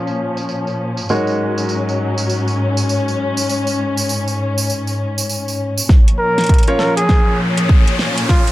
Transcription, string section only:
0.00 1.05 A#2 medium
0.00 1.05 F3 medium
0.00 1.05 C#4 medium
1.09 5.85 G#2 medium
1.09 3.47 F#3 medium
1.09 5.85 C#4 medium
5.89 8.52 A#2 medium
5.89 8.52 F3 medium
5.89 8.52 C#4 medium

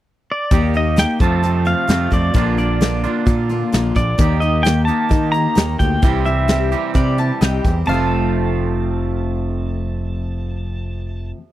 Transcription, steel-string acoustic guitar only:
0.51 0.74 D#3 medium
0.51 0.75 A#3 medium
0.51 0.74 D#4 medium
0.51 0.72 G4 medium
0.74 0.96 A#3 soft
0.74 0.97 D#4 soft
0.74 0.97 G4 soft
0.96 1.20 D#3 medium
0.96 1.20 A#3 medium
0.96 1.20 D#4 medium
0.96 1.19 G4 medium
1.19 1.41 F3 soft
1.19 1.42 A3 soft
1.19 1.43 C4 soft
1.19 1.43 F4 soft
1.43 1.66 F3 medium
1.43 1.66 A3 medium
1.43 1.65 C4 medium
1.43 1.64 F4 medium
1.65 1.88 F3 soft
1.65 1.88 A3 soft
1.65 1.88 C4 soft
1.65 1.89 F4 medium
1.88 2.11 F2 medium
1.88 2.12 C3 medium
1.88 2.12 F3 medium
1.88 2.12 A3 medium
1.88 2.11 C4 medium
1.88 2.09 F4 medium
2.11 2.33 F3 soft
2.11 2.34 A3 soft
2.11 2.34 C4 soft
2.11 2.34 F4 medium
2.34 2.57 A#2 medium
2.34 2.57 F3 medium
2.34 2.58 A#3 medium
2.34 2.58 D4 medium
2.34 2.56 F4 medium
2.57 2.80 A#3 soft
2.57 2.81 D4 soft
2.57 2.81 F4 soft
2.81 3.04 A#2 medium
2.81 3.04 F3 medium
2.81 3.04 A#3 medium
2.81 3.04 D4 medium
2.81 3.02 F4 medium
3.04 3.26 A#3 soft
3.04 3.27 D4 soft
3.04 3.27 F4 medium
3.26 3.49 F3 medium
3.26 3.50 A#3 medium
3.26 3.50 D4 medium
3.26 3.48 F4 medium
3.49 3.72 A#3 medium
3.49 3.73 D4 medium
3.49 3.73 F4 medium
3.72 3.96 A#2 medium
3.72 3.96 F3 medium
3.72 3.96 A#3 medium
3.72 3.95 D4 medium
3.72 3.94 F4 loud
3.95 4.17 A#3 soft
3.95 4.19 D4 soft
3.95 4.18 F4 medium
4.18 4.41 D#3 medium
4.18 4.42 A#3 medium
4.18 4.41 D#4 medium
4.18 4.40 G4 medium
4.41 4.64 A#3 soft
4.41 4.65 D#4 soft
4.41 4.64 G4 soft
4.64 4.88 D#3 medium
4.64 4.88 A#3 medium
4.64 4.87 D#4 medium
4.64 4.86 G4 medium
4.87 5.09 A#3 soft
4.87 5.10 D#4 soft
4.87 5.11 G4 medium
5.09 5.33 D#3 medium
5.09 5.34 A#3 medium
5.09 5.33 D#4 medium
5.09 5.31 G4 medium
5.33 5.55 A#3 soft
5.33 5.55 D#4 soft
5.33 5.56 G4 soft
5.55 5.79 D#3 medium
5.55 5.80 A#3 medium
5.55 5.80 D#4 medium
5.55 5.78 G4 medium
5.79 6.02 A#3 soft
5.79 6.03 D#4 soft
5.79 6.03 G4 medium
6.02 6.26 C3 medium
6.02 6.26 G3 medium
6.02 6.26 C4 medium
6.02 6.25 E4 medium
6.02 6.24 G4 medium
6.25 6.49 C4 soft
6.25 6.49 E4 soft
6.25 6.49 G4 medium
6.49 6.72 C3 medium
6.49 6.72 G3 medium
6.49 6.73 C4 medium
6.49 6.72 E4 medium
6.49 6.70 G4 medium
6.71 6.93 C4 soft
6.71 6.95 E4 medium
6.71 6.95 G4 soft
6.94 7.18 G3 medium
6.94 7.18 C4 medium
6.94 7.18 E4 medium
6.94 7.17 G4 medium
7.18 7.41 C4 soft
7.18 7.41 E4 medium
7.18 7.41 G4 medium
7.41 7.64 C3 medium
7.41 7.65 G3 medium
7.41 7.65 C4 medium
7.41 7.65 E4 medium
7.41 7.64 G4 medium
7.65 7.89 C4 soft
7.65 7.89 E4 soft
7.65 7.88 G4 medium
7.86 11.36 F2 medium
7.86 11.37 C3 medium
7.86 11.39 F3 medium
7.91 11.41 A3 medium
7.91 11.43 C4 medium
7.91 11.44 A4 medium

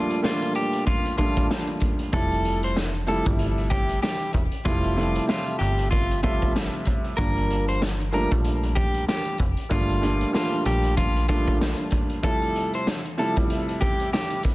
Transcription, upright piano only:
0.00 0.21 A#2 medium
0.00 0.21 F3 medium
0.00 0.21 G3 medium
0.00 0.22 A3 medium
0.00 0.22 D4 loud
0.22 1.11 A#2 loud
0.22 1.12 F3 medium
0.22 1.12 G3 medium
0.22 1.12 A3 medium
0.22 1.12 D4 loud
1.18 2.06 A#2 medium
1.18 2.06 F3 medium
1.18 2.07 G3 medium
1.18 2.07 A3 medium
1.18 2.07 D4 loud
2.12 2.87 C3 medium
2.12 2.87 F3 medium
2.12 2.87 G3 medium
2.12 2.87 A3 medium
2.12 2.87 E4 loud
3.07 4.39 C3 medium
3.07 4.39 F3 medium
3.07 4.39 G3 medium
3.07 4.39 A3 medium
3.07 4.39 E4 loud
4.65 4.94 C3 loud
4.65 4.95 F3 medium
4.65 4.95 G3 medium
4.65 4.95 A3 medium
4.65 4.95 E4 loud
4.96 5.26 C3 medium
4.96 5.26 F3 medium
4.96 5.26 G3 medium
4.96 5.27 A3 medium
4.96 5.27 E4 medium
5.27 6.16 C3 medium
5.27 6.17 F3 medium
5.27 6.17 G3 medium
5.27 6.17 A3 medium
5.27 6.17 E5 medium
6.23 7.12 C3 loud
6.23 7.12 F3 medium
6.23 7.12 G3 medium
6.23 7.12 A3 medium
6.23 7.12 E5 loud
7.18 7.92 A#2 medium
7.18 7.92 F3 medium
7.18 7.92 G3 medium
7.18 7.93 A#3 medium
7.18 7.93 D4 loud
8.12 9.44 A#2 medium
8.12 9.44 F3 loud
8.12 9.44 G3 medium
8.12 9.44 A3 medium
8.12 9.45 D4 medium
9.69 9.99 A#2 medium
9.69 10.00 F3 medium
9.69 10.00 G3 medium
9.69 10.00 A3 medium
9.69 10.00 D4 loud
10.02 10.31 A#2 medium
10.02 10.32 F3 medium
10.02 10.32 G3 medium
10.02 10.32 A3 medium
10.02 10.32 D4 loud
10.33 11.22 A#2 loud
10.33 11.22 F3 medium
10.33 11.22 G3 medium
10.33 11.22 A3 medium
10.33 11.23 D4 loud
11.28 12.17 A#2 medium
11.28 12.17 F3 medium
11.28 12.17 G3 medium
11.28 12.17 A3 medium
11.28 12.18 D4 loud
12.23 12.97 C3 medium
12.23 12.97 F3 medium
12.23 12.98 G3 medium
12.23 12.98 A3 medium
12.23 12.98 E4 loud
13.17 14.49 C3 medium
13.17 14.50 F3 medium
13.17 14.50 G3 medium
13.17 14.50 A3 medium
13.17 14.50 E4 loud

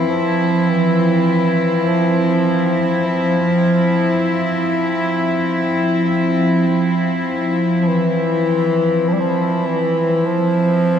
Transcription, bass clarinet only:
0.00 0.11 E3 medium
0.10 0.71 F3 medium
0.70 1.90 E3 medium
1.89 3.06 F3 medium
3.07 4.84 F3 medium
7.82 7.89 F3 medium
7.87 9.10 E3 loud
9.08 9.15 F3 medium
9.14 9.22 G3 medium
9.21 9.68 F3 medium
9.67 10.27 E3 medium
10.26 10.99 F3 loud

